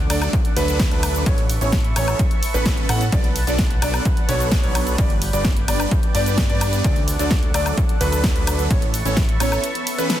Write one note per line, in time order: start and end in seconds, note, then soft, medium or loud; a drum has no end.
0.00 1.22 D4 medium
0.00 1.24 A4 medium
0.00 1.24 F#5 medium
0.00 1.23 D6 medium
0.10 0.28 D2 loud
0.10 0.31 F#3 medium
0.10 0.31 A3 medium
0.10 0.31 D4 medium
0.10 0.31 A4 medium
0.10 0.31 D5 loud
0.10 open hi-hat loud
0.10 ride medium
0.10 cabasa medium
0.10 high woodblock medium
0.22 closed hi-hat soft
0.22 cabasa soft
0.22 high woodblock medium
0.33 kick loud
0.33 closed hi-hat medium
0.33 ride medium
0.33 cabasa soft
0.45 closed hi-hat soft
0.57 0.89 D2 medium
0.57 0.89 F#3 loud
0.57 0.89 A3 medium
0.57 0.89 D4 medium
0.57 0.89 A4 medium
0.57 0.89 B4 loud
0.57 open hi-hat loud
0.57 ride medium
0.57 cabasa medium
0.68 closed hi-hat soft
0.68 cabasa soft
0.80 kick loud
0.80 snare loud
0.80 closed hi-hat medium
0.80 ride medium
0.80 cabasa soft
0.91 1.24 D2 loud
0.91 1.24 F#3 medium
0.91 1.24 A3 medium
0.91 1.24 D4 medium
0.91 1.24 A4 medium
0.91 1.24 B4 loud
0.91 1.24 B4 medium
0.91 closed hi-hat soft
1.03 open hi-hat loud
1.03 ride medium
1.03 cabasa medium
1.03 high woodblock medium
1.15 closed hi-hat soft
1.15 cabasa soft
1.26 1.59 A1 loud
1.26 1.39 E3 medium
1.26 1.39 B3 medium
1.26 1.39 A4 medium
1.26 6.80 B4 medium
1.26 1.39 C#5 loud
1.26 3.10 E5 medium
1.26 4.95 A5 medium
1.26 3.10 C#6 loud
1.26 kick loud
1.26 closed hi-hat medium
1.26 ride medium
1.26 cabasa soft
1.38 closed hi-hat soft
1.50 open hi-hat loud
1.50 ride medium
1.50 cabasa medium
1.61 1.94 A1 loud
1.61 1.74 E3 medium
1.61 1.74 B3 medium
1.61 1.74 C#4 medium
1.61 1.74 A4 medium
1.61 1.74 C#5 medium
1.61 closed hi-hat soft
1.61 cabasa soft
1.73 kick loud
1.73 snare loud
1.73 closed hi-hat medium
1.73 ride medium
1.73 cabasa soft
1.84 closed hi-hat soft
1.96 2.14 A1 medium
1.96 2.17 E3 loud
1.96 2.17 B3 medium
1.96 2.17 C#4 medium
1.96 2.17 A4 medium
1.96 2.17 C#5 loud
1.96 open hi-hat loud
1.96 ride medium
1.96 cabasa medium
1.96 high woodblock medium
2.08 closed hi-hat soft
2.08 cabasa soft
2.08 high woodblock medium
2.19 kick loud
2.19 closed hi-hat medium
2.19 ride medium
2.19 cabasa soft
2.31 closed hi-hat soft
2.43 open hi-hat loud
2.43 ride medium
2.43 cabasa medium
2.54 2.87 A1 medium
2.54 2.86 E3 medium
2.54 2.86 B3 medium
2.54 2.86 C#4 medium
2.54 2.86 A4 medium
2.54 2.86 B4 loud
2.54 closed hi-hat soft
2.54 cabasa soft
2.66 kick loud
2.66 snare loud
2.66 closed hi-hat medium
2.66 ride medium
2.66 cabasa soft
2.78 closed hi-hat soft
2.89 3.10 A2 loud
2.89 3.02 E3 medium
2.89 3.02 B3 medium
2.89 3.02 C#4 medium
2.89 3.02 A4 medium
2.89 3.02 F#5 loud
2.89 open hi-hat loud
2.89 ride medium
2.89 cabasa medium
2.89 high woodblock medium
3.01 closed hi-hat soft
3.01 cabasa soft
3.12 3.45 B1 loud
3.12 3.25 F#3 medium
3.12 3.25 B3 medium
3.12 3.25 D4 medium
3.12 3.25 A4 medium
3.12 3.25 D5 medium
3.12 3.25 D5 loud
3.12 4.97 F#5 medium
3.12 kick loud
3.12 closed hi-hat medium
3.12 ride medium
3.12 cabasa soft
3.24 closed hi-hat soft
3.36 open hi-hat loud
3.36 ride medium
3.36 cabasa medium
3.47 3.80 B1 loud
3.47 3.60 F#3 medium
3.47 3.60 B3 medium
3.47 3.60 D4 medium
3.47 3.60 A4 medium
3.47 3.60 D5 medium
3.47 closed hi-hat soft
3.47 cabasa soft
3.59 kick loud
3.59 snare loud
3.59 closed hi-hat medium
3.59 ride medium
3.59 cabasa soft
3.70 closed hi-hat soft
3.82 4.00 B1 loud
3.82 4.03 F#3 loud
3.82 4.03 B3 medium
3.82 4.03 D4 medium
3.82 4.03 A4 medium
3.82 4.03 D5 loud
3.82 open hi-hat loud
3.82 ride medium
3.82 cabasa medium
3.82 high woodblock medium
3.94 closed hi-hat soft
3.94 cabasa soft
3.94 high woodblock medium
4.05 kick loud
4.05 closed hi-hat medium
4.05 ride medium
4.05 cabasa soft
4.17 closed hi-hat soft
4.29 4.61 B1 loud
4.29 4.61 F#3 loud
4.29 4.61 B3 medium
4.29 4.61 D4 medium
4.29 4.61 A4 medium
4.29 4.61 C#5 loud
4.29 open hi-hat loud
4.29 ride medium
4.29 cabasa medium
4.40 closed hi-hat soft
4.40 cabasa soft
4.52 kick loud
4.52 snare loud
4.52 closed hi-hat medium
4.52 ride medium
4.52 cabasa soft
4.64 4.96 B1 loud
4.64 4.96 F#3 medium
4.64 4.96 B3 medium
4.64 4.96 D4 medium
4.64 4.96 A4 medium
4.64 4.96 C#5 loud
4.64 closed hi-hat soft
4.75 open hi-hat loud
4.75 ride medium
4.75 cabasa medium
4.75 high woodblock medium
4.87 closed hi-hat soft
4.87 cabasa soft
4.98 5.31 G1 loud
4.98 5.11 D5 medium
4.98 8.67 D5 medium
4.98 6.83 G5 medium
4.98 kick loud
4.98 closed hi-hat medium
4.98 ride medium
4.98 cabasa soft
5.10 closed hi-hat soft
5.22 open hi-hat loud
5.22 ride medium
5.22 cabasa medium
5.33 5.66 G1 loud
5.33 5.46 G3 medium
5.33 5.46 B3 medium
5.33 5.46 D4 medium
5.33 5.46 B4 medium
5.33 5.46 D5 medium
5.33 closed hi-hat soft
5.33 cabasa soft
5.45 kick loud
5.45 snare loud
5.45 closed hi-hat medium
5.45 ride medium
5.45 cabasa soft
5.57 closed hi-hat soft
5.68 5.86 G1 loud
5.68 5.89 G3 medium
5.68 5.89 B3 medium
5.68 5.89 D4 medium
5.68 5.89 B4 medium
5.68 5.89 D5 loud
5.68 open hi-hat loud
5.68 ride medium
5.68 cabasa medium
5.68 high woodblock medium
5.80 closed hi-hat soft
5.80 cabasa soft
5.80 high woodblock medium
5.91 kick loud
5.91 closed hi-hat medium
5.91 ride medium
5.91 cabasa soft
6.03 closed hi-hat soft
6.15 6.47 G1 loud
6.15 6.47 G3 loud
6.15 6.47 B3 medium
6.15 6.47 D4 medium
6.15 6.47 B4 medium
6.15 6.47 D5 loud
6.15 open hi-hat loud
6.15 ride medium
6.15 cabasa medium
6.26 closed hi-hat soft
6.26 cabasa medium
6.38 kick loud
6.38 snare loud
6.38 closed hi-hat medium
6.38 ride medium
6.38 cabasa soft
6.50 6.82 G1 loud
6.50 6.82 G3 medium
6.50 6.82 B3 medium
6.50 6.82 D4 medium
6.50 6.82 B4 medium
6.50 6.82 D5 loud
6.50 closed hi-hat soft
6.61 open hi-hat loud
6.61 ride medium
6.61 cabasa medium
6.61 high woodblock medium
6.73 closed hi-hat soft
6.73 cabasa soft
6.84 7.17 D2 loud
6.84 6.97 F#3 medium
6.84 6.97 A3 medium
6.84 6.97 D4 medium
6.84 6.97 A4 medium
6.84 8.69 A4 medium
6.84 6.97 D5 loud
6.84 8.69 F#5 medium
6.84 kick loud
6.84 closed hi-hat medium
6.84 ride medium
6.84 cabasa soft
6.96 closed hi-hat soft
7.08 open hi-hat medium
7.08 ride medium
7.08 cabasa medium
7.19 7.52 D2 loud
7.19 7.32 F#3 medium
7.19 7.32 A3 medium
7.19 7.32 D4 medium
7.19 7.32 A4 medium
7.19 7.32 D5 medium
7.19 closed hi-hat soft
7.19 cabasa soft
7.31 kick loud
7.31 snare loud
7.31 closed hi-hat medium
7.31 ride medium
7.31 cabasa soft
7.43 closed hi-hat soft
7.54 7.72 D2 medium
7.54 7.75 F#3 medium
7.54 7.75 A3 medium
7.54 7.75 D4 medium
7.54 7.75 A4 medium
7.54 7.75 D5 loud
7.54 open hi-hat loud
7.54 ride medium
7.54 cabasa medium
7.54 high woodblock medium
7.66 closed hi-hat soft
7.66 cabasa medium
7.66 high woodblock medium
7.78 kick loud
7.78 closed hi-hat medium
7.78 ride medium
7.78 cabasa soft
7.89 closed hi-hat soft
8.01 8.33 D2 loud
8.01 8.33 F#3 loud
8.01 8.33 A3 loud
8.01 8.33 D4 medium
8.01 8.33 A4 medium
8.01 8.33 B4 loud
8.01 open hi-hat loud
8.01 ride medium
8.01 cabasa medium
8.12 closed hi-hat soft
8.12 cabasa medium
8.24 kick loud
8.24 snare loud
8.24 closed hi-hat medium
8.24 ride medium
8.24 cabasa soft
8.36 8.68 D2 loud
8.36 8.68 F#3 medium
8.36 8.68 A3 medium
8.36 8.68 D4 medium
8.36 8.68 A4 medium
8.36 8.68 B4 loud
8.36 closed hi-hat soft
8.47 open hi-hat loud
8.47 ride medium
8.47 cabasa medium
8.47 high woodblock medium
8.59 closed hi-hat soft
8.59 cabasa soft
8.71 9.03 A1 medium
8.71 8.83 E3 medium
8.71 8.83 B3 medium
8.71 8.83 C#4 medium
8.71 8.83 A4 medium
8.71 10.20 B4 medium
8.71 8.83 C#5 loud
8.71 8.83 C#5 medium
8.71 10.20 E5 medium
8.71 10.20 A5 medium
8.71 10.20 C#6 loud
8.71 kick loud
8.71 closed hi-hat medium
8.71 ride medium
8.71 cabasa soft
8.82 closed hi-hat soft
8.94 open hi-hat loud
8.94 ride medium
8.94 cabasa medium
9.05 9.38 A1 loud
9.05 9.18 E3 medium
9.05 9.18 B3 medium
9.05 9.18 C#4 medium
9.05 9.18 A4 medium
9.05 9.18 C#5 medium
9.05 closed hi-hat soft
9.05 cabasa soft
9.17 kick loud
9.17 snare loud
9.17 closed hi-hat medium
9.17 ride medium
9.17 cabasa soft
9.29 closed hi-hat soft
9.40 9.59 A1 loud
9.40 9.61 E3 medium
9.40 9.61 B3 medium
9.40 9.61 C#4 medium
9.40 9.61 A4 medium
9.40 9.61 C#5 loud
9.40 open hi-hat loud
9.40 ride medium
9.40 cabasa medium
9.40 high woodblock medium
9.52 closed hi-hat soft
9.52 cabasa soft
9.52 high woodblock medium
9.64 closed hi-hat medium
9.64 ride medium
9.64 swell medium
9.64 cabasa soft
9.75 closed hi-hat soft
9.87 open hi-hat loud
9.87 ride medium
9.87 cabasa medium
9.98 10.20 E3 medium
9.98 10.20 B3 medium
9.98 10.20 C#4 medium
9.98 10.20 A4 medium
9.98 10.20 B4 loud
9.98 closed hi-hat soft
9.98 cabasa medium
10.10 snare loud
10.10 closed hi-hat medium
10.10 ride medium
10.10 cabasa soft